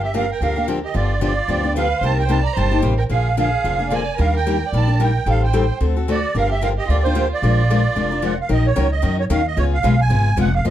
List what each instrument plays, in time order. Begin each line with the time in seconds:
Already playing: upright bass G1
0.03 violin G4, accordion E5
0.14 steel-string acoustic guitar D3 F3 A#3 D4 G4, violin A#4, accordion F5
0.32 violin A#4, accordion G5
0.41 upright bass D2, steel-string acoustic guitar D3 F3 A#3 D4 G4, violin A#4, accordion F5
0.56 steel-string acoustic guitar A#3 D4 G4
0.68 steel-string acoustic guitar D3 F3 A#3 D4 G4
0.84 violin G4, accordion D#5
0.94 upright bass G1, steel-string acoustic guitar D3 F3 B3 D4 G4, violin F4, accordion D5
1.21 steel-string acoustic guitar D3 F3 B3 D4 G4, violin F4, accordion D5
1.48 upright bass D2, steel-string acoustic guitar D3 F3 B3 D4 G4
1.63 steel-string acoustic guitar B3 D4 G4
1.76 steel-string acoustic guitar D3 F3 B3 D4 G4, violin B4, accordion F5
2.01 upright bass C2, steel-string acoustic guitar C3 G3 A#3 D#4 G4, violin C5, accordion A5
2.17 violin A#4, accordion G5
2.28 steel-string acoustic guitar C3 G3 A#3 D#4 G4, violin C5, accordion A5
2.43 violin D5, accordion A#5
2.56 upright bass G1, steel-string acoustic guitar C3 G3 A#3 D#4 G4, violin C5, accordion A5
2.71 steel-string acoustic guitar A#3 D#4 G4
2.82 upright bass A1, steel-string acoustic guitar C3 G3 A#3 D#4 G4
2.98 violin A#4, accordion G5
3.09 upright bass A#1, steel-string acoustic guitar D3 F3 A#3 D4 G#4, violin G#4, accordion F5
3.37 steel-string acoustic guitar D3 F3 A#3 D4 G#4, violin G#4, accordion F5
3.64 upright bass F1, steel-string acoustic guitar D3 F3 A#3 D4 G#4
3.79 steel-string acoustic guitar A#3 D4 G#4
3.89 steel-string acoustic guitar D3 F3 A#3 D4 G#4, violin D5
3.94 accordion G#5
4.17 upright bass D#2, steel-string acoustic guitar D#3 G3 A#3 D4 G4, violin A#4, accordion F5
4.33 violin A#4, accordion G5
4.46 steel-string acoustic guitar D#3 G3 A#3 D4 G4
4.69 upright bass A#1, violin D5
4.73 steel-string acoustic guitar D#3 G3 A#3 D4 G4, accordion A5
4.87 steel-string acoustic guitar A#3 D4 G4
4.98 steel-string acoustic guitar D#3 G3 A#3 D4 G4, violin A#4
5.04 accordion G5
5.26 upright bass A1, steel-string acoustic guitar D#3 G3 C4 G4 A4, violin A4
5.30 accordion F5
5.43 violin C5, accordion G5
5.53 steel-string acoustic guitar D#3 G3 C4 G4 A4
5.80 upright bass D2, steel-string acoustic guitar D3 A3 C4 F#4 A4
5.96 steel-string acoustic guitar C4 F#4 A4
6.08 steel-string acoustic guitar D3 A3 C4 F#4 A4, violin F#4, accordion D5
6.35 upright bass G1, steel-string acoustic guitar D3 F3 A#3 D4 G4, violin A#4, accordion F5
6.50 violin G4, accordion E5
6.62 steel-string acoustic guitar D3 F3 A#3 D4 G4, violin A#4, accordion F5
6.78 violin G4, accordion D#5
6.88 upright bass D2, steel-string acoustic guitar D3 F3 A#3 D4 G4, violin F4, accordion D5
7.04 steel-string acoustic guitar A#3 D4 G4, violin F4, accordion C5
7.15 steel-string acoustic guitar D3 F3 A#3 D4 G4
7.31 violin F4, accordion D5
7.42 upright bass A#1, steel-string acoustic guitar F3 G#3 D4 F4 A#4
7.70 steel-string acoustic guitar F3 G#3 D4 F4 A#4
7.96 upright bass F1, steel-string acoustic guitar F3 G#3 D4 F4 A#4
8.11 steel-string acoustic guitar D4 F4 A#4
8.22 steel-string acoustic guitar F3 G#3 D4 F4 A#4, accordion F#5
8.41 accordion F5
8.49 upright bass A#1, steel-string acoustic guitar D#3 F#3 C#4 D#4 A#4, accordion D#5
8.66 accordion C#5
8.76 upright bass C#2, steel-string acoustic guitar D#3 F#3 C#4 D#4 A#4
8.92 accordion D#5
9.02 upright bass F#2, steel-string acoustic guitar D#3 F#3 C#4 D#4 A#4
9.20 accordion C#5
9.30 upright bass D#2, steel-string acoustic guitar D#3 F#3 C#4 D#4 A#4, accordion F5
9.47 accordion D#5
9.57 upright bass C#2, steel-string acoustic guitar C#3 G#3 B3 F4 G#4, accordion C#5
9.74 accordion F5
9.83 upright bass B1, steel-string acoustic guitar C#3 G#3 B3 F4 G#4
10.01 accordion G#5
10.10 upright bass G#1, steel-string acoustic guitar C#3 G#3 B3 F4 G#4
10.37 upright bass F1, steel-string acoustic guitar C#3 G#3 B3 F4 G#4, accordion F#5
10.55 accordion F5
10.65 upright bass F#1, steel-string acoustic guitar C#3 F3 A#3 C#4 F#4, accordion D#5